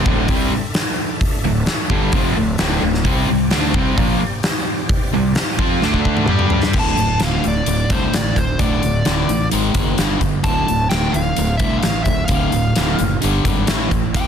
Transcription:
Already playing: D4 A4 E5
0.06 D1 D2 A2 D3, kick
0.28 C2 C3 G3 C4, kick, open hi-hat
0.52 muted overdriven electric guitar stroke, muted distorted electric guitar stroke, muted fingered electric bass stroke
0.74 snare, open hi-hat
1.21 kick, open hi-hat
1.45 D1 D2 A2
1.66 snare, open hi-hat
1.90 G1 G2 D3 G3, kick
2.12 F1 F2 C3 F3, kick, open hi-hat
2.36 D1 D2 A2
2.58 D1 D2 A2 D3, snare, open hi-hat
2.82 D1 D2 A2
2.94 snare
3.05 C2 C3 G3 C4 G4 D5, kick, open hi-hat
3.29 C2 C3 G3
3.50 D2 D3 A3 D4, snare, open hi-hat
3.74 C2 C3 G3 C4, kick
3.97 A#1 A#2 F3 A#3, kick, open hi-hat
4.20 muted overdriven electric guitar stroke, muted fingered electric bass stroke, muted distorted electric guitar stroke
4.43 snare, open hi-hat
4.89 kick, open hi-hat
5.13 C2 C3 G3
5.35 snare, open hi-hat
5.59 F2 F3 C4 F4, kick
5.82 D2 D3 A3 D4 A4 E5, snare
5.94 kick
6.05 kick
6.17 mid tom
6.28 G2 G3 D4 G4, mid tom
6.39 mid tom
6.50 floor tom
6.63 snare
6.73 D1 D2 A2 D3, kick, crash
6.79 A5
6.97 D1 D2 A2, closed hi-hat
7.20 D1 D2 A2 D3 F5, snare, closed hi-hat
7.44 D1 D2 A2, closed hi-hat
7.48 D5
7.66 D1 D2 A2, closed hi-hat
7.90 C2 D2 A2 D3 C5, kick, closed hi-hat
8.13 A1 D2 A2 D5, snare, closed hi-hat
8.36 D1 D2 A2 C5, kick, closed hi-hat
8.59 D1 D2 A2 D3 D5, kick, closed hi-hat
8.83 D1 D2 A2, closed hi-hat
9.05 D1 D2 A2 D3, snare, closed hi-hat
9.29 A1 D2 A2, closed hi-hat
9.52 G#1 G#2 D#3 G#3, closed hi-hat
9.74 F#1 G#2 D#3 G#3, kick, closed hi-hat
9.98 G1 G2 D3 G3, snare, closed hi-hat
10.21 G1 G2 D3, kick, closed hi-hat
10.44 D1 D2 A2 D3 A5, kick, closed hi-hat
10.68 D1 D2 A2, closed hi-hat
10.89 D1 D2 A2 D3 G5, snare, closed hi-hat
11.12 D1 D2 A2 F5, closed hi-hat
11.37 D1 D2 A2, closed hi-hat
11.57 C2 D2 A2 E5, kick, closed hi-hat
11.62 D3
11.79 F5, closed hi-hat
11.83 A1 D2 A2, snare
12.04 D1 E5, kick, closed hi-hat
12.08 D2 A2
12.25 F5, kick, closed hi-hat
12.30 D1 D2 A2 D3
12.52 D1 D2 A2, closed hi-hat
12.76 D1 D2 A2 D3, snare, closed hi-hat
12.99 F#1 D2 A2, closed hi-hat
13.22 G1 G2 D3 G3, closed hi-hat
13.45 G#1 G2 D3 G3, kick, closed hi-hat
13.67 A1 A2 E3 A3, snare, closed hi-hat
13.91 A1 A2 E3, kick, closed hi-hat
14.14 D1 D2 A2 D3 G5, kick, closed hi-hat

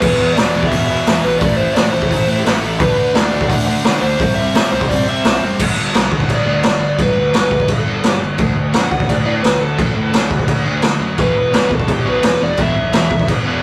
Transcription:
Already playing: B4
0.01 E1 E2 B2 E3, kick, open hi-hat, crash
0.19 E2 B2 E3
0.33 E1 E2 B2 E3 D5, open hi-hat
0.37 snare
0.53 E1 E2 B2 E3
0.63 kick
0.67 E2 E5
0.71 E1 B2 E3, kick, open hi-hat
0.87 E2 B2 E3 E5
1.07 E2 B2 E3, snare, open hi-hat
1.21 B1 E2 B2 E3 B4
1.39 A1 A2 E3 A3 D5, kick, open hi-hat
1.56 A2 E3 A3 C5
1.74 A2 E3 A3 D5, snare, open hi-hat
1.90 A1 A2 E3 A3 C5
2.02 kick
2.10 A1 A2 E3 A3, kick, open hi-hat
2.27 A2 E3 A3
2.38 G4
2.44 A1 A2 E3 A3 A4, snare, open hi-hat
2.62 A1 A2 E3 A3
2.79 D2 D3 A3 D4 B4, kick, open hi-hat
2.96 D3 A3 D4
3.13 D2 D3 A3 D4 D5, snare, open hi-hat
3.32 D2 D3 A3 D4
3.41 kick
3.48 D2 D3 A3 D4 F#5, kick, open hi-hat
3.65 D3 A3 D4 F#5
3.84 D3 A3 D4, snare, open hi-hat
4.00 D2 D3 A3 D4 C5
4.19 C2 C3 G3 C4, kick, open hi-hat
4.35 C3 G3 E5
4.39 C4
4.54 C3 G3 C4, snare, open hi-hat
4.71 C2 C3 G3 C4 C5
4.81 kick
4.89 C2 C3 G3 C4 D5, kick, open hi-hat
5.07 C3 G3 C4 E5
5.24 C2 C3 G3 C4, snare, open hi-hat
5.42 F#1 C3 G3 C4
5.58 G1 G2 D3 G3, kick, crash
5.76 G1 G2 D3
5.94 B1 G2 D3 G3, snare, crash
6.12 G1 G2 D3, kick
6.20 kick
6.27 G1 G2 D3 D5, kick, crash
6.45 D2 G2 D3 G3
6.62 G1 G2 D3 D5, snare, crash
6.79 G1 G2 D3
6.98 G1 G2 D3 G3 B4, kick, crash
7.15 D2 G2 D3
7.33 G1 G2 D3 G3, snare, crash
7.37 B4
7.51 G1 G2 D3, kick
7.60 kick
7.68 G2 D3 A4, kick, crash
7.85 G1 G2 D3 G3
8.04 G2 D3, snare, crash
8.21 G1 G2 D3
8.37 D2 D3 A3 D4, kick, crash
8.56 D2 D3 A3
8.72 F#2 D3 A3 D4 F#5, snare, crash
8.90 D2 D3 A3 F#5, kick
9.00 kick
9.07 D2 D3 A3 D5, kick, crash
9.25 A2 D3 A3 D4 D5
9.42 D2 D3 A3 B4, snare, crash
9.59 D2 D3 A3 A4
9.77 D2 D3 A3 D4, kick, crash
9.95 A2 D3 A3
10.12 D2 D3 A3 D4, snare, crash
10.30 D2 D3 A3, kick
10.39 kick
10.48 D3 A3, kick, crash
10.65 D2 D3 A3 D4
10.82 D3 A3, snare, crash
11.00 F#2 D3 A3
11.18 E1 E2 B2 E3 B4, kick, crash
11.35 E1 E2 B2 B4
11.52 G1 E2 B2 E3, snare, crash
11.69 E1 E2 B2, kick
11.74 A4
11.80 kick
11.88 E1 E2 B2, kick, crash
11.92 G4
12.05 B1 E2 B2 E3 B4
12.23 E1 E2 B2, snare, crash
12.40 E1 E2 B2 D5
12.57 E1 E2 B2 E3, kick, crash
12.61 E5
12.75 B1 E2 B2
12.92 E1 E2 B2 E3, snare, crash
13.10 E1 E2 B2, kick
13.19 kick
13.27 E2 B2, kick, crash
13.44 E1 E2 B2 E3

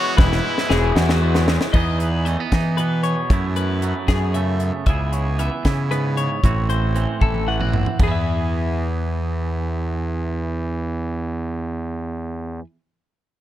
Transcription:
Already playing: E3 G#3 B3 E4 F#4 C#5
0.17 E1 E3 G#3 B3 E4 B4, kick, snare
0.32 snare
0.44 E3 G#3 B3 E4
0.58 snare
0.69 E1 E3 G#3 B3 E4 G#4, snare
0.96 E2 E3 G#3 B3 E4 F#4, snare
1.09 snare
1.22 E3 G#3 B3 E4
1.35 snare
1.48 E3 G#3 B3 E4, snare
1.61 snare
1.73 E2 B3 D#4 G#4 D#5, kick, crash
1.99 B4, closed hi-hat
2.25 E3 A3 D#5, closed hi-hat
2.40 B3
2.52 E3 D#4, kick, snare, closed hi-hat
2.77 B2 B3 B4, closed hi-hat
3.03 C#5, closed hi-hat
3.30 F#2 A3 B3 E4, kick, closed hi-hat
3.56 B4, closed hi-hat
3.82 F#3 A3, closed hi-hat
4.08 F#2 B3 G#4, kick, snare, closed hi-hat
4.34 C#3 A3 E5, closed hi-hat
4.60 closed hi-hat
4.86 C#2 C#3 B3 E4 G#4 E5, kick, closed hi-hat
5.13 C#5, closed hi-hat
5.39 E3 B3 E5, closed hi-hat
5.65 C#3 E4, kick, snare, closed hi-hat
5.91 G#2 B3 B4, closed hi-hat
6.17 C#5, closed hi-hat
6.44 A1 A2 C4 E4 F#4, kick, closed hi-hat
6.70 C5, closed hi-hat
6.95 E3 C4, closed hi-hat
7.21 A1 E4 A4, kick, high tom
7.35 high tom
7.48 E3 A3 F#5
7.61 C4, mid tom
7.73 floor tom
7.86 floor tom
7.99 E2 E3 B3, kick, floor tom, crash
8.04 G#4
8.08 G#4 B4 E5

